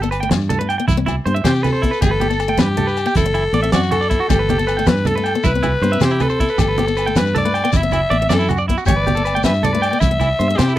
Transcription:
Already playing: G1
0.02 B3 A4, shekere
0.11 B4, closed hi-hat, low conga, low agogo, shekere
0.20 A3 G5
0.29 G2 B3, muted clean electric guitar stroke, snare, closed hi-hat, high conga, low agogo, shekere
0.41 shekere
0.49 A3 A4, closed hi-hat, low conga, shekere
0.59 A3 B4, low conga
0.69 G5, closed hi-hat, low agogo
0.80 B3
0.88 C2 E4, kick, closed hi-hat, high conga, shekere
0.97 C4
1.06 E4, closed hi-hat, low conga, low agogo, shekere
1.26 G2 B3 C5, closed hi-hat
1.34 C4 E5
1.44 C3 C4 G4 C5, snare, closed hi-hat, high conga, low agogo, shekere
1.55 shekere
1.63 A4 B4, closed hi-hat, low conga, low agogo, shekere
1.73 C5, low conga, shekere
1.82 B3 E4, kick, closed hi-hat
1.91 B4, shekere
2.01 G1 A3 G4 A4, kick, closed hi-hat, high conga, low conga, low agogo, shekere
2.11 B4, low conga
2.20 B3 G4, closed hi-hat, low conga
2.30 B3 A4, shekere
2.40 muted clean electric guitar stroke, closed hi-hat, low agogo, shekere
2.48 A3 G5
2.58 G2 B3 G4 B4, snare, closed hi-hat, high conga, low agogo, shekere
2.69 low conga
2.77 A3 A4, closed hi-hat, low conga
2.87 B4, shekere
2.97 closed hi-hat, low agogo, shekere
3.06 B3 G5, shekere
3.15 F#1 E4 A4, kick, closed hi-hat, high conga, shekere
3.26 muted steel-string acoustic guitar stroke
3.34 E4, closed hi-hat, low agogo
3.53 A1 B3 D5, closed hi-hat
3.63 C4 E5
3.72 F#2 C4 F#4 D5, snare, closed hi-hat, high conga, low conga, low agogo, shekere
3.83 shekere
3.91 F#4 A4, closed hi-hat, low conga, low agogo
4.01 D5, shekere
4.10 B3 E4, kick, closed hi-hat, low conga, shekere
4.20 F#4
4.29 G1 A3 G4 A4, kick, closed hi-hat, high conga, low conga, low agogo, shekere
4.39 B4
4.49 B3 G4, closed hi-hat, low conga
4.58 B3 A4, shekere
4.67 B4, closed hi-hat, low conga, low agogo, shekere
4.77 A3 G5
4.87 G2 B3 B4, snare, closed hi-hat, high conga, low agogo, shekere
4.97 shekere
5.05 A3 A4, closed hi-hat, low conga, shekere
5.15 A3 B4, low conga
5.24 G5, closed hi-hat, low agogo
5.35 B3
5.44 C2 E4 B4, kick, closed hi-hat, high conga, shekere
5.55 C4
5.63 E4, closed hi-hat, low conga, low agogo, shekere
5.82 G2 B3 C5, closed hi-hat
5.92 C4 E5
6.00 C3 C4 G4 C5, snare, closed hi-hat, high conga, low agogo, shekere
6.10 E4, shekere
6.20 A4 B4, closed hi-hat, low conga, low agogo, shekere
6.29 C5, low conga, shekere
6.40 B3 E4, kick, closed hi-hat
6.48 B4, shekere
6.58 G1 A3 G4 A4, kick, closed hi-hat, high conga, low conga, low agogo, shekere
6.68 B4
6.78 B3 G4, closed hi-hat, low conga
6.87 B3, muted clean electric guitar stroke, shekere
6.96 B4, closed hi-hat, low conga, low agogo, shekere
7.06 A3 G5
7.16 G2 B3 B4, snare, closed hi-hat, high conga, low agogo, shekere
7.26 shekere
7.35 A3 A4 D5, closed hi-hat, low conga, shekere
7.45 A3 B4, low conga
7.54 G5, closed hi-hat, low agogo
7.64 B3 G5
7.73 F#1 E4 E5, kick, closed hi-hat, high conga, shekere
7.83 C4
7.92 E4, closed hi-hat, low conga, low agogo, shekere
8.10 A1 B3 D5, closed hi-hat
8.20 C4 E5
8.29 F#2 C4 D5, snare, closed hi-hat, high conga, low agogo, shekere
8.34 A4
8.39 E4, shekere
8.48 F#4, closed hi-hat, low conga, low agogo, shekere
8.57 D5, low conga, shekere
8.68 B3 E4, kick, closed hi-hat
8.78 F#4, shekere
8.86 G1 A3 G4 D5, kick, closed hi-hat, high conga, low conga, low agogo, shekere
8.96 B4
9.07 B3 G4, closed hi-hat, low conga
9.15 B3 A4, shekere
9.25 B4, closed hi-hat, low agogo, shekere
9.35 A3 G5
9.44 G2 B3 B4 E5, snare, closed hi-hat, high conga, low agogo, shekere
9.55 shekere
9.63 A3 A4 D5, closed hi-hat, low conga, shekere
9.73 A3 B4, low conga
9.82 G5, closed hi-hat, low agogo
9.91 B3 G5
10.00 C2 E4 E5, kick, closed hi-hat, high conga, shekere
10.11 C4
10.20 E4, closed hi-hat, low conga, low agogo, shekere
10.39 G2 B3 C5, closed hi-hat
10.48 C4 E5
10.57 C3 C4 G4 C5, snare, closed hi-hat, high conga, low agogo, shekere
10.68 E4, shekere
10.76 A4

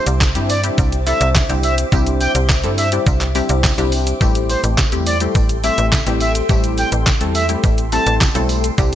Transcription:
Already playing: G3 C4 D4 E4 G4 C5 E5 D6
0.07 C2, closed hi-hat, shaker
0.21 kick, snare, clap, tambourine, shaker
0.35 G2 G3 C4 D4 E4 G4, closed hi-hat, shaker
0.49 D5, open hi-hat, tambourine, shaker
0.64 G3 C4 D4 E4 G4, closed hi-hat, shaker
0.78 C2, kick, tambourine, shaker
0.92 closed hi-hat, shaker
1.06 G3 C4 D4 E4 A4 E5, open hi-hat, shaker
1.21 C2, closed hi-hat, shaker
1.35 kick, snare, clap, tambourine, shaker
1.49 C2 G3 C4 D4 E4 G4, closed hi-hat, shaker
1.63 E5, open hi-hat, tambourine, shaker
1.78 closed hi-hat, shaker
1.92 C2 G3 C4 D4 E4 G4, kick, tambourine, shaker
2.06 closed hi-hat, shaker
2.20 G5, open hi-hat, tambourine, shaker
2.35 C2, closed hi-hat, shaker
2.49 kick, snare, clap, tambourine, shaker
2.63 G2 G3 C4 D4 E4 A4, closed hi-hat, shaker
2.78 E5, open hi-hat, tambourine, shaker
2.92 G3 C4 D4 E4 G4, closed hi-hat, shaker
3.06 C2, kick, tambourine, shaker
3.21 clap, closed hi-hat, shaker
3.35 G3 C4 D4 E4 G4, open hi-hat, tambourine, shaker
3.49 C2, closed hi-hat, shaker
3.64 kick, snare, clap, tambourine, shaker
3.78 C2 G3 C4 D4 E4 G4, closed hi-hat, shaker
3.92 open hi-hat, tambourine, shaker
4.07 closed hi-hat, shaker
4.21 A1 G3 A3 C4 E4 G4 A4 G5 C6, kick, tambourine, shaker
4.35 closed hi-hat, shaker
4.49 C5, open hi-hat, tambourine, shaker
4.64 A1, closed hi-hat, shaker
4.78 kick, snare, clap, tambourine, shaker
4.92 E2 G3 A3 C4 E4 G4, closed hi-hat, shaker
5.06 D5, open hi-hat, tambourine, shaker
5.20 G3 A3 C4 E4 G4, closed hi-hat, shaker
5.35 A1, kick, tambourine, shaker
5.49 closed hi-hat, shaker
5.63 G3 A3 C4 E4 G4 E5, open hi-hat, tambourine, shaker
5.78 A1, closed hi-hat, shaker
5.92 kick, snare, clap, tambourine, shaker
6.06 A1 G3 A3 C4 E4 G4, closed hi-hat, shaker
6.20 E5, open hi-hat, tambourine, shaker
6.35 closed hi-hat, shaker
6.49 A1 G3 A3 C4 E4 G4, kick, tambourine, shaker
6.64 closed hi-hat, shaker
6.78 G5, open hi-hat, tambourine, shaker
6.92 A1, closed hi-hat, shaker
7.07 kick, snare, clap, tambourine, shaker
7.21 E2 G3 A3 C4 E4 A4, closed hi-hat, shaker
7.35 E5, open hi-hat, tambourine, shaker
7.49 G3 A3 C4 E4 G4, closed hi-hat, shaker
7.64 A1, kick, tambourine, shaker
7.78 closed hi-hat, shaker
7.92 G3 A3 C4 E4 A4 A5, open hi-hat, tambourine, shaker
8.06 A1, closed hi-hat, shaker
8.21 kick, snare, clap, tambourine, shaker
8.35 B1 G3 A3 C4 E4 A4, closed hi-hat, shaker
8.49 open hi-hat, tambourine, shaker
8.64 closed hi-hat, shaker
8.78 C2 G3 C4 D4 E4 G4 D5, kick, tambourine, shaker

